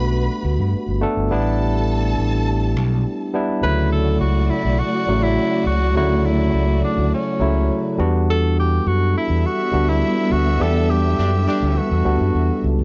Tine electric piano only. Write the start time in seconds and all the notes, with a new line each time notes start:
Already playing: A3 B3 D4 F#4
1.01 A3 B3 D4 A4
1.31 G3 B3 D4 E4
3.34 G3 B3 D4 E4
3.63 C#3 F#3 A3 E4
5.08 C#3 F#3 A3 F#4
5.95 C#3 F#3 A3 E4
7.40 C#3 F#3 A3 E4
7.98 G3 B3 D4 F#4
9.73 G3 B3 D4 F#4
10.60 G3 B3 D4 G4
12.05 G3 B3 D4 F#4